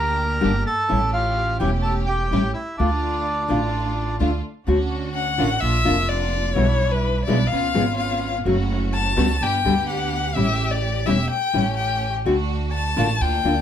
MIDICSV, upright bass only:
0, 0, Header, 1, 2, 480
1, 0, Start_track
1, 0, Key_signature, -1, "minor"
1, 0, Tempo, 473186
1, 908, Time_signature, 4, 2, 24, 8
1, 4748, Key_signature, 2, "major"
1, 13811, End_track
2, 0, Start_track
2, 0, Title_t, "Upright bass"
2, 0, Program_c, 0, 32
2, 0, Note_on_c, 0, 38, 86
2, 401, Note_off_c, 0, 38, 0
2, 442, Note_on_c, 0, 31, 88
2, 637, Note_off_c, 0, 31, 0
2, 924, Note_on_c, 0, 33, 96
2, 1598, Note_off_c, 0, 33, 0
2, 1627, Note_on_c, 0, 28, 96
2, 2310, Note_off_c, 0, 28, 0
2, 2344, Note_on_c, 0, 33, 80
2, 2546, Note_off_c, 0, 33, 0
2, 2834, Note_on_c, 0, 38, 89
2, 3512, Note_off_c, 0, 38, 0
2, 3553, Note_on_c, 0, 33, 86
2, 4234, Note_off_c, 0, 33, 0
2, 4263, Note_on_c, 0, 38, 75
2, 4467, Note_off_c, 0, 38, 0
2, 4741, Note_on_c, 0, 38, 86
2, 5429, Note_off_c, 0, 38, 0
2, 5473, Note_on_c, 0, 33, 91
2, 5672, Note_off_c, 0, 33, 0
2, 5705, Note_on_c, 0, 34, 86
2, 5908, Note_off_c, 0, 34, 0
2, 5952, Note_on_c, 0, 29, 100
2, 6633, Note_off_c, 0, 29, 0
2, 6660, Note_on_c, 0, 35, 90
2, 7346, Note_off_c, 0, 35, 0
2, 7385, Note_on_c, 0, 35, 87
2, 7586, Note_off_c, 0, 35, 0
2, 7624, Note_on_c, 0, 37, 84
2, 7825, Note_off_c, 0, 37, 0
2, 7858, Note_on_c, 0, 32, 87
2, 8544, Note_off_c, 0, 32, 0
2, 8576, Note_on_c, 0, 30, 84
2, 9262, Note_off_c, 0, 30, 0
2, 9300, Note_on_c, 0, 37, 98
2, 9503, Note_off_c, 0, 37, 0
2, 9544, Note_on_c, 0, 31, 89
2, 9745, Note_off_c, 0, 31, 0
2, 9789, Note_on_c, 0, 38, 89
2, 10471, Note_off_c, 0, 38, 0
2, 10510, Note_on_c, 0, 33, 89
2, 11193, Note_off_c, 0, 33, 0
2, 11228, Note_on_c, 0, 28, 86
2, 11429, Note_off_c, 0, 28, 0
2, 11705, Note_on_c, 0, 33, 82
2, 12394, Note_off_c, 0, 33, 0
2, 12430, Note_on_c, 0, 38, 82
2, 13117, Note_off_c, 0, 38, 0
2, 13154, Note_on_c, 0, 33, 99
2, 13355, Note_off_c, 0, 33, 0
2, 13396, Note_on_c, 0, 38, 92
2, 13597, Note_off_c, 0, 38, 0
2, 13635, Note_on_c, 0, 38, 91
2, 13811, Note_off_c, 0, 38, 0
2, 13811, End_track
0, 0, End_of_file